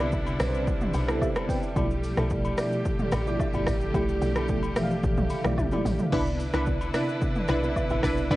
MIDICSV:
0, 0, Header, 1, 6, 480
1, 0, Start_track
1, 0, Key_signature, 0, "major"
1, 0, Tempo, 545455
1, 1551, Time_signature, 4, 2, 24, 8
1, 7359, End_track
2, 0, Start_track
2, 0, Title_t, "Synth stab"
2, 0, Program_c, 0, 62
2, 5387, Note_on_c, 0, 62, 94
2, 5390, Note_on_c, 0, 64, 90
2, 5392, Note_on_c, 0, 71, 105
2, 5487, Note_off_c, 0, 62, 0
2, 5488, Note_off_c, 0, 64, 0
2, 5489, Note_off_c, 0, 71, 0
2, 5753, Note_on_c, 0, 62, 80
2, 5756, Note_on_c, 0, 64, 72
2, 5758, Note_on_c, 0, 71, 90
2, 5845, Note_off_c, 0, 62, 0
2, 5846, Note_off_c, 0, 64, 0
2, 5847, Note_off_c, 0, 71, 0
2, 6110, Note_on_c, 0, 62, 78
2, 6113, Note_on_c, 0, 64, 72
2, 6115, Note_on_c, 0, 71, 83
2, 6208, Note_off_c, 0, 62, 0
2, 6209, Note_off_c, 0, 64, 0
2, 6211, Note_off_c, 0, 71, 0
2, 6590, Note_on_c, 0, 62, 79
2, 6593, Note_on_c, 0, 64, 73
2, 6596, Note_on_c, 0, 71, 86
2, 6688, Note_off_c, 0, 62, 0
2, 6689, Note_off_c, 0, 64, 0
2, 6691, Note_off_c, 0, 71, 0
2, 7069, Note_on_c, 0, 62, 82
2, 7072, Note_on_c, 0, 64, 72
2, 7074, Note_on_c, 0, 71, 89
2, 7292, Note_off_c, 0, 62, 0
2, 7293, Note_off_c, 0, 64, 0
2, 7294, Note_off_c, 0, 71, 0
2, 7310, Note_on_c, 0, 62, 96
2, 7312, Note_on_c, 0, 64, 88
2, 7314, Note_on_c, 0, 71, 104
2, 7359, Note_off_c, 0, 62, 0
2, 7359, Note_off_c, 0, 64, 0
2, 7359, Note_off_c, 0, 71, 0
2, 7359, End_track
3, 0, Start_track
3, 0, Title_t, "String section"
3, 0, Program_c, 1, 48
3, 0, Note_on_c, 1, 50, 80
3, 0, Note_on_c, 1, 55, 77
3, 0, Note_on_c, 1, 62, 74
3, 0, Note_on_c, 1, 64, 93
3, 1515, Note_off_c, 1, 50, 0
3, 1515, Note_off_c, 1, 62, 0
3, 1515, Note_off_c, 1, 64, 0
3, 1552, Note_on_c, 1, 57, 74
3, 1554, Note_on_c, 1, 50, 81
3, 1554, Note_on_c, 1, 67, 94
3, 5357, Note_off_c, 1, 55, 0
3, 5357, Note_off_c, 1, 57, 0
3, 5358, Note_off_c, 1, 50, 0
3, 5358, Note_off_c, 1, 67, 0
3, 5390, Note_on_c, 1, 50, 86
3, 5390, Note_on_c, 1, 62, 78
3, 5390, Note_on_c, 1, 71, 76
3, 5391, Note_on_c, 1, 64, 91
3, 7359, Note_off_c, 1, 50, 0
3, 7359, Note_off_c, 1, 62, 0
3, 7359, Note_off_c, 1, 64, 0
3, 7359, Note_off_c, 1, 71, 0
3, 7359, End_track
4, 0, Start_track
4, 0, Title_t, "FM electric piano"
4, 0, Program_c, 2, 5
4, 0, Control_c, 2, 64, 127
4, 0, Note_on_c, 2, 48, 94
4, 0, Note_on_c, 2, 59, 82
4, 0, Note_on_c, 2, 63, 69
4, 0, Note_on_c, 2, 64, 82
4, 0, Note_on_c, 2, 74, 97
4, 0, Note_on_c, 2, 76, 101
4, 4, Note_off_c, 2, 74, 0
4, 4, Note_on_c, 2, 74, 102
4, 281, Note_off_c, 2, 48, 0
4, 282, Note_off_c, 2, 59, 0
4, 284, Note_off_c, 2, 64, 0
4, 286, Note_off_c, 2, 74, 0
4, 349, Note_on_c, 2, 60, 95
4, 352, Note_on_c, 2, 71, 88
4, 356, Note_on_c, 2, 64, 85
4, 359, Note_off_c, 2, 71, 0
4, 359, Note_on_c, 2, 71, 87
4, 415, Note_off_c, 2, 71, 0
4, 417, Note_on_c, 2, 72, 108
4, 830, Note_off_c, 2, 60, 0
4, 834, Note_off_c, 2, 64, 0
4, 864, Note_off_c, 2, 72, 0
4, 951, Note_on_c, 2, 48, 91
4, 955, Note_on_c, 2, 59, 87
4, 959, Note_on_c, 2, 64, 85
4, 963, Note_on_c, 2, 69, 102
4, 1071, Note_off_c, 2, 76, 0
4, 1071, Note_on_c, 2, 76, 67
4, 1075, Note_off_c, 2, 69, 0
4, 1077, Note_on_c, 2, 67, 58
4, 1144, Note_off_c, 2, 48, 0
4, 1146, Note_off_c, 2, 59, 0
4, 1148, Note_off_c, 2, 64, 0
4, 1190, Note_off_c, 2, 76, 0
4, 1193, Note_off_c, 2, 67, 0
4, 1197, Note_on_c, 2, 81, 73
4, 1202, Note_on_c, 2, 72, 63
4, 1306, Note_off_c, 2, 81, 0
4, 1309, Note_off_c, 2, 72, 0
4, 1313, Note_on_c, 2, 79, 74
4, 1318, Note_on_c, 2, 71, 62
4, 1431, Note_off_c, 2, 79, 0
4, 1434, Note_off_c, 2, 71, 0
4, 1438, Note_on_c, 2, 74, 67
4, 1547, Note_on_c, 2, 47, 86
4, 1548, Note_off_c, 2, 74, 0
4, 1551, Note_on_c, 2, 53, 81
4, 1553, Note_on_c, 2, 57, 85
4, 1556, Note_on_c, 2, 64, 80
4, 1558, Note_on_c, 2, 74, 96
4, 1563, Control_c, 2, 64, 0
4, 1564, Note_off_c, 2, 63, 0
4, 1737, Control_c, 2, 64, 127
4, 1839, Note_off_c, 2, 47, 0
4, 1841, Note_off_c, 2, 53, 0
4, 1842, Note_off_c, 2, 57, 0
4, 1844, Note_off_c, 2, 64, 0
4, 1845, Note_off_c, 2, 74, 0
4, 1913, Note_on_c, 2, 47, 92
4, 1915, Note_on_c, 2, 53, 86
4, 1917, Note_on_c, 2, 57, 83
4, 1920, Note_on_c, 2, 64, 85
4, 1924, Note_on_c, 2, 69, 95
4, 2200, Note_off_c, 2, 47, 0
4, 2202, Note_off_c, 2, 53, 0
4, 2203, Note_off_c, 2, 57, 0
4, 2204, Note_off_c, 2, 64, 0
4, 2206, Note_off_c, 2, 69, 0
4, 2268, Note_on_c, 2, 47, 99
4, 2271, Note_on_c, 2, 53, 86
4, 2274, Note_on_c, 2, 57, 84
4, 2276, Note_on_c, 2, 64, 85
4, 2279, Note_on_c, 2, 74, 103
4, 2750, Note_off_c, 2, 47, 0
4, 2751, Note_off_c, 2, 53, 0
4, 2752, Note_off_c, 2, 57, 0
4, 2754, Note_off_c, 2, 64, 0
4, 2755, Note_off_c, 2, 74, 0
4, 2873, Note_on_c, 2, 47, 89
4, 2876, Note_on_c, 2, 53, 81
4, 2878, Note_on_c, 2, 57, 83
4, 2881, Note_on_c, 2, 64, 82
4, 2884, Note_on_c, 2, 74, 101
4, 3065, Note_off_c, 2, 47, 0
4, 3066, Note_off_c, 2, 53, 0
4, 3067, Note_off_c, 2, 57, 0
4, 3069, Note_off_c, 2, 64, 0
4, 3070, Note_off_c, 2, 74, 0
4, 3113, Note_on_c, 2, 47, 88
4, 3116, Note_on_c, 2, 53, 79
4, 3119, Note_on_c, 2, 57, 80
4, 3121, Note_on_c, 2, 64, 81
4, 3123, Note_on_c, 2, 74, 95
4, 3400, Note_off_c, 2, 47, 0
4, 3402, Note_off_c, 2, 53, 0
4, 3403, Note_off_c, 2, 57, 0
4, 3405, Note_off_c, 2, 64, 0
4, 3406, Note_off_c, 2, 74, 0
4, 3468, Note_on_c, 2, 47, 91
4, 3472, Note_on_c, 2, 53, 80
4, 3474, Note_on_c, 2, 57, 79
4, 3476, Note_on_c, 2, 64, 79
4, 3479, Note_on_c, 2, 67, 98
4, 3760, Note_off_c, 2, 47, 0
4, 3761, Note_off_c, 2, 53, 0
4, 3762, Note_off_c, 2, 57, 0
4, 3764, Note_off_c, 2, 64, 0
4, 3765, Note_off_c, 2, 67, 0
4, 3832, Note_on_c, 2, 47, 92
4, 3835, Note_on_c, 2, 53, 81
4, 3838, Note_on_c, 2, 57, 82
4, 3840, Note_on_c, 2, 64, 83
4, 3843, Note_on_c, 2, 69, 98
4, 4120, Note_off_c, 2, 47, 0
4, 4122, Note_off_c, 2, 53, 0
4, 4123, Note_off_c, 2, 57, 0
4, 4124, Note_off_c, 2, 64, 0
4, 4126, Note_off_c, 2, 69, 0
4, 4186, Note_on_c, 2, 47, 90
4, 4188, Note_on_c, 2, 53, 87
4, 4191, Note_on_c, 2, 57, 86
4, 4193, Note_on_c, 2, 52, 83
4, 4196, Note_on_c, 2, 76, 78
4, 4253, Note_off_c, 2, 76, 0
4, 4254, Note_on_c, 2, 77, 102
4, 4669, Note_off_c, 2, 47, 0
4, 4670, Note_off_c, 2, 53, 0
4, 4671, Note_off_c, 2, 57, 0
4, 4672, Note_off_c, 2, 52, 0
4, 4703, Note_off_c, 2, 77, 0
4, 4790, Note_on_c, 2, 47, 88
4, 4792, Note_on_c, 2, 53, 84
4, 4796, Note_on_c, 2, 57, 80
4, 4798, Note_on_c, 2, 64, 79
4, 4801, Note_on_c, 2, 74, 102
4, 4983, Note_off_c, 2, 47, 0
4, 4984, Note_off_c, 2, 53, 0
4, 4986, Note_off_c, 2, 57, 0
4, 4987, Note_off_c, 2, 64, 0
4, 4989, Note_off_c, 2, 74, 0
4, 5032, Note_on_c, 2, 47, 86
4, 5035, Note_on_c, 2, 53, 80
4, 5037, Note_on_c, 2, 57, 81
4, 5040, Note_on_c, 2, 64, 78
4, 5043, Note_on_c, 2, 74, 93
4, 5320, Note_off_c, 2, 47, 0
4, 5322, Note_off_c, 2, 53, 0
4, 5323, Note_off_c, 2, 57, 0
4, 5324, Note_off_c, 2, 64, 0
4, 5326, Note_off_c, 2, 74, 0
4, 5387, Note_on_c, 2, 48, 88
4, 5390, Note_on_c, 2, 59, 81
4, 5394, Note_on_c, 2, 64, 82
4, 5398, Note_on_c, 2, 74, 95
4, 5402, Control_c, 2, 64, 0
4, 5579, Control_c, 2, 64, 127
4, 5679, Note_off_c, 2, 48, 0
4, 5681, Note_off_c, 2, 59, 0
4, 5683, Note_off_c, 2, 64, 0
4, 5685, Note_off_c, 2, 74, 0
4, 5752, Note_on_c, 2, 48, 90
4, 5756, Note_on_c, 2, 59, 80
4, 5759, Note_on_c, 2, 64, 79
4, 5763, Note_on_c, 2, 74, 100
4, 6040, Note_off_c, 2, 48, 0
4, 6042, Note_off_c, 2, 59, 0
4, 6044, Note_off_c, 2, 64, 0
4, 6046, Note_off_c, 2, 74, 0
4, 6108, Note_on_c, 2, 48, 97
4, 6112, Note_on_c, 2, 59, 88
4, 6116, Note_on_c, 2, 64, 87
4, 6119, Note_on_c, 2, 74, 104
4, 6590, Note_off_c, 2, 48, 0
4, 6592, Note_off_c, 2, 59, 0
4, 6594, Note_off_c, 2, 64, 0
4, 6595, Note_off_c, 2, 74, 0
4, 6713, Note_on_c, 2, 48, 92
4, 6717, Note_on_c, 2, 59, 82
4, 6719, Note_on_c, 2, 64, 84
4, 6724, Note_on_c, 2, 71, 100
4, 6905, Note_off_c, 2, 48, 0
4, 6907, Note_off_c, 2, 59, 0
4, 6908, Note_off_c, 2, 64, 0
4, 6910, Note_off_c, 2, 71, 0
4, 6954, Note_on_c, 2, 48, 90
4, 6957, Note_on_c, 2, 59, 77
4, 6960, Note_on_c, 2, 64, 82
4, 6964, Note_on_c, 2, 76, 96
4, 7241, Note_off_c, 2, 48, 0
4, 7243, Note_off_c, 2, 59, 0
4, 7244, Note_off_c, 2, 64, 0
4, 7246, Note_off_c, 2, 76, 0
4, 7308, Note_on_c, 2, 48, 89
4, 7311, Note_on_c, 2, 59, 77
4, 7314, Note_on_c, 2, 64, 77
4, 7318, Note_on_c, 2, 74, 101
4, 7359, Note_off_c, 2, 48, 0
4, 7359, Note_off_c, 2, 59, 0
4, 7359, Note_off_c, 2, 64, 0
4, 7359, Note_off_c, 2, 74, 0
4, 7359, End_track
5, 0, Start_track
5, 0, Title_t, "Log drum bass"
5, 0, Program_c, 3, 39
5, 0, Note_on_c, 3, 36, 118
5, 316, Note_off_c, 3, 36, 0
5, 351, Note_on_c, 3, 35, 101
5, 796, Note_off_c, 3, 35, 0
5, 831, Note_on_c, 3, 35, 96
5, 1052, Note_off_c, 3, 35, 0
5, 1551, Note_on_c, 3, 35, 114
5, 1887, Note_off_c, 3, 35, 0
5, 1915, Note_on_c, 3, 35, 103
5, 2243, Note_off_c, 3, 35, 0
5, 2750, Note_on_c, 3, 33, 104
5, 2972, Note_off_c, 3, 33, 0
5, 3114, Note_on_c, 3, 31, 89
5, 3221, Note_off_c, 3, 31, 0
5, 3230, Note_on_c, 3, 33, 98
5, 3451, Note_off_c, 3, 33, 0
5, 3469, Note_on_c, 3, 35, 116
5, 3691, Note_off_c, 3, 35, 0
5, 3709, Note_on_c, 3, 35, 111
5, 4190, Note_on_c, 3, 33, 96
5, 4204, Note_off_c, 3, 35, 0
5, 4412, Note_off_c, 3, 33, 0
5, 4431, Note_on_c, 3, 33, 92
5, 4546, Note_off_c, 3, 33, 0
5, 4554, Note_on_c, 3, 35, 95
5, 4661, Note_off_c, 3, 35, 0
5, 4795, Note_on_c, 3, 35, 88
5, 4902, Note_off_c, 3, 35, 0
5, 4909, Note_on_c, 3, 35, 94
5, 5025, Note_off_c, 3, 35, 0
5, 5149, Note_on_c, 3, 33, 101
5, 5265, Note_off_c, 3, 33, 0
5, 5390, Note_on_c, 3, 36, 105
5, 5727, Note_off_c, 3, 36, 0
5, 5755, Note_on_c, 3, 36, 91
5, 6083, Note_off_c, 3, 36, 0
5, 6593, Note_on_c, 3, 35, 104
5, 6813, Note_off_c, 3, 35, 0
5, 6957, Note_on_c, 3, 33, 85
5, 7063, Note_off_c, 3, 33, 0
5, 7071, Note_on_c, 3, 35, 99
5, 7292, Note_off_c, 3, 35, 0
5, 7310, Note_on_c, 3, 36, 119
5, 7359, Note_off_c, 3, 36, 0
5, 7359, End_track
6, 0, Start_track
6, 0, Title_t, "Drums"
6, 1, Note_on_c, 9, 67, 75
6, 89, Note_off_c, 9, 67, 0
6, 105, Note_on_c, 9, 82, 74
6, 112, Note_on_c, 9, 36, 94
6, 193, Note_off_c, 9, 82, 0
6, 200, Note_off_c, 9, 36, 0
6, 233, Note_on_c, 9, 67, 75
6, 238, Note_on_c, 9, 82, 56
6, 321, Note_off_c, 9, 67, 0
6, 326, Note_off_c, 9, 82, 0
6, 350, Note_on_c, 9, 46, 55
6, 350, Note_on_c, 9, 82, 91
6, 351, Note_on_c, 9, 37, 102
6, 438, Note_off_c, 9, 46, 0
6, 438, Note_off_c, 9, 82, 0
6, 439, Note_off_c, 9, 37, 0
6, 480, Note_on_c, 9, 82, 60
6, 568, Note_off_c, 9, 82, 0
6, 593, Note_on_c, 9, 36, 127
6, 593, Note_on_c, 9, 82, 72
6, 681, Note_off_c, 9, 36, 0
6, 681, Note_off_c, 9, 82, 0
6, 713, Note_on_c, 9, 82, 47
6, 718, Note_on_c, 9, 45, 90
6, 801, Note_off_c, 9, 82, 0
6, 806, Note_off_c, 9, 45, 0
6, 825, Note_on_c, 9, 46, 56
6, 825, Note_on_c, 9, 82, 96
6, 828, Note_on_c, 9, 67, 70
6, 913, Note_off_c, 9, 46, 0
6, 913, Note_off_c, 9, 82, 0
6, 916, Note_off_c, 9, 67, 0
6, 954, Note_on_c, 9, 37, 108
6, 960, Note_on_c, 9, 82, 57
6, 1042, Note_off_c, 9, 37, 0
6, 1048, Note_off_c, 9, 82, 0
6, 1071, Note_on_c, 9, 36, 96
6, 1071, Note_on_c, 9, 77, 99
6, 1079, Note_on_c, 9, 82, 81
6, 1159, Note_off_c, 9, 36, 0
6, 1159, Note_off_c, 9, 77, 0
6, 1167, Note_off_c, 9, 82, 0
6, 1192, Note_on_c, 9, 82, 50
6, 1197, Note_on_c, 9, 37, 99
6, 1202, Note_on_c, 9, 67, 72
6, 1280, Note_off_c, 9, 82, 0
6, 1285, Note_off_c, 9, 37, 0
6, 1290, Note_off_c, 9, 67, 0
6, 1311, Note_on_c, 9, 36, 94
6, 1319, Note_on_c, 9, 46, 64
6, 1319, Note_on_c, 9, 82, 105
6, 1399, Note_off_c, 9, 36, 0
6, 1407, Note_off_c, 9, 46, 0
6, 1407, Note_off_c, 9, 82, 0
6, 1433, Note_on_c, 9, 82, 65
6, 1521, Note_off_c, 9, 82, 0
6, 1551, Note_on_c, 9, 36, 118
6, 1552, Note_on_c, 9, 82, 75
6, 1554, Note_on_c, 9, 67, 76
6, 1639, Note_off_c, 9, 36, 0
6, 1640, Note_off_c, 9, 82, 0
6, 1642, Note_off_c, 9, 67, 0
6, 1677, Note_on_c, 9, 82, 54
6, 1765, Note_off_c, 9, 82, 0
6, 1793, Note_on_c, 9, 46, 52
6, 1793, Note_on_c, 9, 82, 85
6, 1881, Note_off_c, 9, 46, 0
6, 1881, Note_off_c, 9, 82, 0
6, 1911, Note_on_c, 9, 82, 52
6, 1913, Note_on_c, 9, 37, 91
6, 1923, Note_on_c, 9, 67, 74
6, 1999, Note_off_c, 9, 82, 0
6, 2001, Note_off_c, 9, 37, 0
6, 2011, Note_off_c, 9, 67, 0
6, 2024, Note_on_c, 9, 82, 74
6, 2032, Note_on_c, 9, 36, 94
6, 2112, Note_off_c, 9, 82, 0
6, 2120, Note_off_c, 9, 36, 0
6, 2154, Note_on_c, 9, 67, 75
6, 2157, Note_on_c, 9, 82, 56
6, 2242, Note_off_c, 9, 67, 0
6, 2245, Note_off_c, 9, 82, 0
6, 2269, Note_on_c, 9, 46, 54
6, 2269, Note_on_c, 9, 82, 98
6, 2270, Note_on_c, 9, 37, 99
6, 2357, Note_off_c, 9, 46, 0
6, 2357, Note_off_c, 9, 82, 0
6, 2358, Note_off_c, 9, 37, 0
6, 2398, Note_on_c, 9, 82, 57
6, 2486, Note_off_c, 9, 82, 0
6, 2511, Note_on_c, 9, 82, 78
6, 2512, Note_on_c, 9, 36, 124
6, 2599, Note_off_c, 9, 82, 0
6, 2600, Note_off_c, 9, 36, 0
6, 2631, Note_on_c, 9, 82, 47
6, 2636, Note_on_c, 9, 45, 88
6, 2719, Note_off_c, 9, 82, 0
6, 2724, Note_off_c, 9, 45, 0
6, 2744, Note_on_c, 9, 46, 56
6, 2744, Note_on_c, 9, 82, 95
6, 2746, Note_on_c, 9, 67, 73
6, 2748, Note_on_c, 9, 37, 97
6, 2832, Note_off_c, 9, 46, 0
6, 2832, Note_off_c, 9, 82, 0
6, 2834, Note_off_c, 9, 67, 0
6, 2836, Note_off_c, 9, 37, 0
6, 2877, Note_on_c, 9, 82, 59
6, 2965, Note_off_c, 9, 82, 0
6, 2989, Note_on_c, 9, 36, 97
6, 2989, Note_on_c, 9, 77, 100
6, 2996, Note_on_c, 9, 82, 78
6, 3077, Note_off_c, 9, 36, 0
6, 3077, Note_off_c, 9, 77, 0
6, 3084, Note_off_c, 9, 82, 0
6, 3109, Note_on_c, 9, 82, 52
6, 3121, Note_on_c, 9, 67, 73
6, 3197, Note_off_c, 9, 82, 0
6, 3209, Note_off_c, 9, 67, 0
6, 3226, Note_on_c, 9, 37, 100
6, 3229, Note_on_c, 9, 36, 98
6, 3237, Note_on_c, 9, 46, 61
6, 3237, Note_on_c, 9, 82, 107
6, 3314, Note_off_c, 9, 37, 0
6, 3317, Note_off_c, 9, 36, 0
6, 3325, Note_off_c, 9, 46, 0
6, 3325, Note_off_c, 9, 82, 0
6, 3350, Note_on_c, 9, 82, 65
6, 3438, Note_off_c, 9, 82, 0
6, 3469, Note_on_c, 9, 36, 117
6, 3470, Note_on_c, 9, 82, 74
6, 3472, Note_on_c, 9, 67, 76
6, 3557, Note_off_c, 9, 36, 0
6, 3558, Note_off_c, 9, 82, 0
6, 3560, Note_off_c, 9, 67, 0
6, 3596, Note_on_c, 9, 82, 56
6, 3684, Note_off_c, 9, 82, 0
6, 3711, Note_on_c, 9, 46, 54
6, 3711, Note_on_c, 9, 82, 85
6, 3799, Note_off_c, 9, 46, 0
6, 3799, Note_off_c, 9, 82, 0
6, 3831, Note_on_c, 9, 82, 52
6, 3833, Note_on_c, 9, 37, 93
6, 3839, Note_on_c, 9, 67, 73
6, 3919, Note_off_c, 9, 82, 0
6, 3921, Note_off_c, 9, 37, 0
6, 3927, Note_off_c, 9, 67, 0
6, 3943, Note_on_c, 9, 82, 72
6, 3952, Note_on_c, 9, 36, 93
6, 4031, Note_off_c, 9, 82, 0
6, 4040, Note_off_c, 9, 36, 0
6, 4071, Note_on_c, 9, 67, 74
6, 4078, Note_on_c, 9, 82, 57
6, 4159, Note_off_c, 9, 67, 0
6, 4166, Note_off_c, 9, 82, 0
6, 4189, Note_on_c, 9, 46, 57
6, 4189, Note_on_c, 9, 82, 99
6, 4190, Note_on_c, 9, 37, 105
6, 4277, Note_off_c, 9, 46, 0
6, 4277, Note_off_c, 9, 82, 0
6, 4278, Note_off_c, 9, 37, 0
6, 4318, Note_on_c, 9, 82, 56
6, 4406, Note_off_c, 9, 82, 0
6, 4431, Note_on_c, 9, 36, 127
6, 4431, Note_on_c, 9, 82, 74
6, 4519, Note_off_c, 9, 36, 0
6, 4519, Note_off_c, 9, 82, 0
6, 4550, Note_on_c, 9, 82, 45
6, 4555, Note_on_c, 9, 45, 92
6, 4638, Note_off_c, 9, 82, 0
6, 4643, Note_off_c, 9, 45, 0
6, 4662, Note_on_c, 9, 46, 59
6, 4662, Note_on_c, 9, 82, 96
6, 4666, Note_on_c, 9, 67, 69
6, 4750, Note_off_c, 9, 46, 0
6, 4750, Note_off_c, 9, 82, 0
6, 4754, Note_off_c, 9, 67, 0
6, 4791, Note_on_c, 9, 37, 108
6, 4795, Note_on_c, 9, 45, 74
6, 4797, Note_on_c, 9, 82, 56
6, 4879, Note_off_c, 9, 37, 0
6, 4883, Note_off_c, 9, 45, 0
6, 4885, Note_off_c, 9, 82, 0
6, 4909, Note_on_c, 9, 36, 95
6, 4909, Note_on_c, 9, 48, 68
6, 4909, Note_on_c, 9, 77, 99
6, 4916, Note_on_c, 9, 82, 73
6, 4997, Note_off_c, 9, 36, 0
6, 4997, Note_off_c, 9, 48, 0
6, 4997, Note_off_c, 9, 77, 0
6, 5004, Note_off_c, 9, 82, 0
6, 5029, Note_on_c, 9, 82, 49
6, 5034, Note_on_c, 9, 47, 69
6, 5042, Note_on_c, 9, 67, 70
6, 5117, Note_off_c, 9, 82, 0
6, 5122, Note_off_c, 9, 47, 0
6, 5130, Note_off_c, 9, 67, 0
6, 5149, Note_on_c, 9, 45, 100
6, 5156, Note_on_c, 9, 46, 61
6, 5156, Note_on_c, 9, 82, 102
6, 5237, Note_off_c, 9, 45, 0
6, 5244, Note_off_c, 9, 46, 0
6, 5244, Note_off_c, 9, 82, 0
6, 5270, Note_on_c, 9, 82, 62
6, 5274, Note_on_c, 9, 43, 97
6, 5358, Note_off_c, 9, 82, 0
6, 5362, Note_off_c, 9, 43, 0
6, 5389, Note_on_c, 9, 36, 121
6, 5389, Note_on_c, 9, 49, 81
6, 5393, Note_on_c, 9, 67, 79
6, 5477, Note_off_c, 9, 36, 0
6, 5477, Note_off_c, 9, 49, 0
6, 5481, Note_off_c, 9, 67, 0
6, 5516, Note_on_c, 9, 82, 56
6, 5604, Note_off_c, 9, 82, 0
6, 5630, Note_on_c, 9, 46, 52
6, 5630, Note_on_c, 9, 82, 89
6, 5718, Note_off_c, 9, 46, 0
6, 5718, Note_off_c, 9, 82, 0
6, 5750, Note_on_c, 9, 82, 52
6, 5752, Note_on_c, 9, 37, 95
6, 5760, Note_on_c, 9, 67, 75
6, 5838, Note_off_c, 9, 82, 0
6, 5840, Note_off_c, 9, 37, 0
6, 5848, Note_off_c, 9, 67, 0
6, 5863, Note_on_c, 9, 82, 72
6, 5872, Note_on_c, 9, 36, 93
6, 5951, Note_off_c, 9, 82, 0
6, 5960, Note_off_c, 9, 36, 0
6, 5992, Note_on_c, 9, 67, 77
6, 5997, Note_on_c, 9, 82, 59
6, 6080, Note_off_c, 9, 67, 0
6, 6085, Note_off_c, 9, 82, 0
6, 6107, Note_on_c, 9, 46, 55
6, 6107, Note_on_c, 9, 82, 93
6, 6108, Note_on_c, 9, 37, 104
6, 6195, Note_off_c, 9, 46, 0
6, 6195, Note_off_c, 9, 82, 0
6, 6196, Note_off_c, 9, 37, 0
6, 6237, Note_on_c, 9, 82, 59
6, 6325, Note_off_c, 9, 82, 0
6, 6350, Note_on_c, 9, 82, 74
6, 6351, Note_on_c, 9, 36, 120
6, 6438, Note_off_c, 9, 82, 0
6, 6439, Note_off_c, 9, 36, 0
6, 6471, Note_on_c, 9, 82, 45
6, 6476, Note_on_c, 9, 45, 92
6, 6559, Note_off_c, 9, 82, 0
6, 6564, Note_off_c, 9, 45, 0
6, 6583, Note_on_c, 9, 46, 56
6, 6583, Note_on_c, 9, 82, 93
6, 6588, Note_on_c, 9, 37, 97
6, 6588, Note_on_c, 9, 67, 71
6, 6671, Note_off_c, 9, 46, 0
6, 6671, Note_off_c, 9, 82, 0
6, 6676, Note_off_c, 9, 37, 0
6, 6676, Note_off_c, 9, 67, 0
6, 6718, Note_on_c, 9, 82, 58
6, 6806, Note_off_c, 9, 82, 0
6, 6830, Note_on_c, 9, 36, 94
6, 6831, Note_on_c, 9, 77, 96
6, 6837, Note_on_c, 9, 82, 78
6, 6918, Note_off_c, 9, 36, 0
6, 6919, Note_off_c, 9, 77, 0
6, 6925, Note_off_c, 9, 82, 0
6, 6950, Note_on_c, 9, 82, 52
6, 6961, Note_on_c, 9, 67, 72
6, 7038, Note_off_c, 9, 82, 0
6, 7049, Note_off_c, 9, 67, 0
6, 7067, Note_on_c, 9, 37, 99
6, 7070, Note_on_c, 9, 36, 93
6, 7077, Note_on_c, 9, 46, 61
6, 7077, Note_on_c, 9, 82, 103
6, 7155, Note_off_c, 9, 37, 0
6, 7158, Note_off_c, 9, 36, 0
6, 7165, Note_off_c, 9, 46, 0
6, 7165, Note_off_c, 9, 82, 0
6, 7192, Note_on_c, 9, 82, 67
6, 7280, Note_off_c, 9, 82, 0
6, 7311, Note_on_c, 9, 36, 120
6, 7312, Note_on_c, 9, 82, 77
6, 7314, Note_on_c, 9, 67, 77
6, 7359, Note_off_c, 9, 36, 0
6, 7359, Note_off_c, 9, 67, 0
6, 7359, Note_off_c, 9, 82, 0
6, 7359, End_track
0, 0, End_of_file